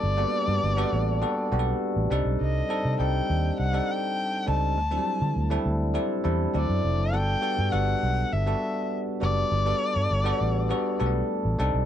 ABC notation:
X:1
M:4/4
L:1/16
Q:1/4=101
K:G
V:1 name="Erhu"
d8- d2 z6 | _e4 g4 f2 g4 a2- | a6 z6 d4 | g4 f4 e4 z2 d2- |
d8- d2 z6 |]
V:2 name="Tine electric piano"
z [G,_B,=B,DFA]3 z [G,B,DFA]2 z [G,B,DFA]2 [G,B,DFGA]4 [G,CD_EA]2- | [G,CD_EA] z [G,CDEA]2 [G,CDEA]4 z [G,CDEA]4 z [G,CDEA]2 | z [F,G,CDEA]3 z [G,CDEA]2 z [G,CDEA]2 [G,CDEA]2 [F,CDEA]3 z | [G,B,DFA]2 [G,B,DFA]2 [G,B,DFA]4 z [G,B,DFA]4 z [G,B,DFA]2 |
z [G,B,DFA]3 z [G,B,DFA]2 z [G,B,DFA]2 [G,A,B,DFA]4 [G,CD_EA]2 |]
V:3 name="Fingered electric bass" clef=bass
G,,,2 z G,, G,,,2 A,,,3 z B,,,2 z A,,, C,, B,,, | C,,2 z C, C,,2 _E,,2 C,,2 z4 ^C,,2 | D,,2 z D, D,,2 D,,3 z E,,2 D,, F,, =F,,, ^F,,, | G,,,2 z G,, G,,,2 B,,,2 G,,,2 z4 F,,,2 |
G,,,2 z G,, G,,,2 A,,,3 z B,,,2 z A,,, C,, B,,, |]